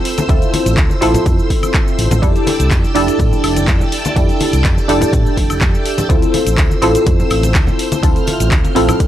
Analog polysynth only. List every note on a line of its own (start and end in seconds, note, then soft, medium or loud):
0.00 0.26 C4 medium
0.00 0.26 E4 medium
0.00 0.27 F4 medium
0.00 0.27 A4 loud
0.28 0.99 C4 medium
0.28 0.99 E4 medium
0.28 0.99 F4 medium
0.28 0.99 A4 medium
1.01 2.20 C4 medium
1.01 2.20 E4 medium
1.01 2.20 F4 medium
1.01 2.20 A4 loud
2.22 2.92 D4 medium
2.22 2.92 E4 medium
2.22 2.93 G4 medium
2.22 2.93 A4 medium
2.95 4.13 D4 medium
2.95 4.13 E4 medium
2.95 4.14 G4 medium
2.95 4.14 A4 loud
4.16 4.86 D4 medium
4.16 4.86 E4 medium
4.16 4.86 G4 medium
4.16 4.87 A4 medium
4.88 6.07 D4 medium
4.88 6.07 E4 medium
4.88 6.07 G4 medium
4.88 6.08 A4 loud
6.09 6.79 C4 medium
6.09 6.80 E4 medium
6.09 6.80 F4 medium
6.09 6.80 A4 medium
6.82 8.00 C4 medium
6.82 8.01 E4 medium
6.82 8.01 F4 medium
6.82 8.01 A4 loud
8.02 8.73 C4 medium
8.02 8.73 E4 medium
8.02 8.73 F4 medium
8.02 8.74 A4 medium
8.75 9.07 C4 loud
8.75 9.07 E4 medium
8.75 9.07 F4 medium
8.75 9.07 A4 loud